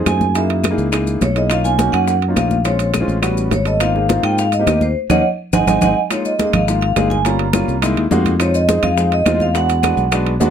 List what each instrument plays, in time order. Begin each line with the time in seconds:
0.00 grand piano C4 D#4 F4 G#4
0.06 fingered electric bass F#2, vibraphone G#5, high bongo, low bongo, high conga, high timbale, low timbale, claves, maracas
0.21 high bongo, high conga, maracas
0.35 grand piano A#3 D#4 E4 G#4, vibraphone E5, high bongo, high conga, high timbale, maracas
0.50 high bongo, high conga, high timbale
0.64 high bongo, high conga, high timbale, claves, maracas
0.70 grand piano A#3 D#4 E4 G#4
0.78 fingered electric bass C#2, high bongo, high conga, maracas
0.92 grand piano A#3 D#4 E4 G#4, high bongo, high conga, high timbale, claves, maracas
1.07 high conga, maracas
1.21 fingered electric bass B1, vibraphone C#5, high bongo, low bongo, high conga, high timbale, low timbale, maracas
1.35 grand piano A#3 D#4 E4 G#4, vibraphone D#5, high bongo, high conga, high timbale, maracas
1.50 grand piano A#3 C#4 D#4 F4, vibraphone F5, high bongo, high conga, high timbale, claves, maracas
1.64 grand piano A#3 C#4 D#4 F4, vibraphone G#5, high bongo, high conga, maracas
1.78 grand piano A#3 C#4 D#4 F#4, high bongo, high conga, high timbale, maracas
1.92 fingered electric bass F#2, vibraphone F#5, high conga, high timbale, claves, maracas
2.08 high bongo, high conga, maracas
2.22 high conga, high timbale
2.28 grand piano A#3 C#4 D#4 F4
2.36 fingered electric bass A#1, vibraphone F5, high bongo, low bongo, high conga, high timbale, low timbale, claves, maracas
2.51 high bongo, high conga, maracas
2.64 grand piano G#3 C4 C#4 F4, vibraphone C#5, high bongo, high conga, high timbale, maracas
2.79 high bongo, high conga, high timbale, maracas
2.94 high bongo, high conga, high timbale, claves, maracas
3.00 grand piano G#3 C4 C#4 F4
3.08 fingered electric bass A1, high bongo, high conga, maracas
3.22 grand piano G3 B3 C#4 F#4, high bongo, high conga, high timbale, claves, maracas
3.37 high conga, maracas
3.51 fingered electric bass G#1, vibraphone C#5, high bongo, low bongo, high conga, high timbale, low timbale, maracas
3.65 grand piano G3 B3 C#4 A4, vibraphone D#5, high bongo, high conga, high timbale, maracas
3.80 grand piano A#3 C4 D#4 F4, vibraphone F5, high bongo, high conga, high timbale, claves, maracas
3.94 grand piano A#3 C4 D#4 G#4, high bongo, high conga
4.09 grand piano A#3 C4 D#4 F4, high bongo, high conga, high timbale, maracas
4.23 fingered electric bass G#2, vibraphone G5, high conga, high timbale, claves, maracas
4.38 vibraphone F5, high bongo, high conga, maracas
4.52 vibraphone D#5, high conga, high timbale, maracas
4.59 grand piano A#3 C4 D#4 G4
4.66 fingered electric bass D#2, high bongo, low bongo, high conga, high timbale, low timbale, claves, maracas
4.81 vibraphone C5, high bongo, high conga, maracas
5.10 fingered electric bass D#2, grand piano A#3 C#4 D#4, vibraphone C#5 D#5 F#5, low bongo, low conga, high timbale, claves, maracas
5.53 fingered electric bass G#1, grand piano G#3 C4 D#4, vibraphone D#5 F#5 G#5, low bongo, low conga, high timbale, claves, maracas
5.67 fingered electric bass G#1, grand piano G#3 C4 D#4, vibraphone D#5 F#5 G#5, low bongo, low conga, high timbale, claves, maracas
5.81 fingered electric bass G#1, grand piano G#3 C4 D#4, vibraphone D#5 F#5 G#5, low bongo, low conga, high timbale, claves, maracas
6.10 grand piano G#3 A#3 D#4 F4, vibraphone C#5, high bongo, high conga, high timbale, claves, maracas
6.25 vibraphone D#5, high bongo, high conga, maracas
6.38 grand piano G#3 A#3 D#4 G#4, high bongo, high conga, high timbale, low timbale, maracas
6.47 vibraphone D#5
6.53 fingered electric bass G#1, vibraphone F5, high bongo, high conga, low conga, high timbale, claves, maracas
6.67 grand piano G#3 A#3 D#4 F4, high bongo, high conga, maracas
6.81 vibraphone F5, high conga, high timbale
6.96 fingered electric bass G1, grand piano G#3 A#3 D#4 G#4, high bongo, low bongo, high conga, high timbale, low timbale, claves, maracas
7.10 vibraphone G#5, high bongo, high conga, maracas
7.25 grand piano G3 A#3 C#4 F4, vibraphone A#5, high bongo, high conga, high timbale, maracas
7.39 high bongo, high conga, high timbale
7.53 grand piano G3 A#3 C#4 F4, high bongo, high conga, high timbale, low timbale, claves, maracas
7.68 fingered electric bass C2, high bongo, high conga, maracas
7.82 grand piano G#3 A#3 D#4 E4, high bongo, high conga, high timbale, claves, maracas
7.97 fingered electric bass D#2, high conga, high timbale
8.11 fingered electric bass F2, grand piano G#3 A#3 D#4 F#4, high bongo, low bongo, high conga, low timbale, maracas
8.26 high bongo, high conga, high timbale, maracas
8.39 grand piano G#3 C4 D#4 F4, vibraphone C#5, high bongo, high conga, high timbale, claves, maracas
8.54 vibraphone D#5, high bongo, high conga, maracas
8.68 grand piano G#3 C4 D#4 G#4, high bongo, high conga, high timbale, low timbale, maracas
8.83 fingered electric bass F2, vibraphone F5, high bongo, high conga, low conga, high timbale, claves, maracas
8.97 grand piano G#3 C4 D#4 G#4, high bongo, high conga, maracas
9.12 vibraphone D#5, high conga, high timbale
9.25 fingered electric bass E2, grand piano G#3 C4 D#4 F4, high bongo, low bongo, high conga, high timbale, low timbale, claves, maracas
9.40 vibraphone F5, high bongo, high conga, maracas
9.54 grand piano G#3 B3 D4 F#4, vibraphone F#5, high bongo, high conga, high timbale, maracas
9.69 high bongo, high conga, high timbale, maracas
9.82 grand piano G#3 B3 D4 F#4, high bongo, high conga, high timbale, low timbale, claves, maracas
9.97 fingered electric bass B1, high bongo, high conga, maracas
10.11 grand piano G#3 B3 D4 F#4, high bongo, high conga, high timbale, claves, maracas
10.27 high conga, high timbale
10.40 fingered electric bass D#2, grand piano G#3 B3 D4 F#4, high bongo, low bongo, high conga, low timbale, maracas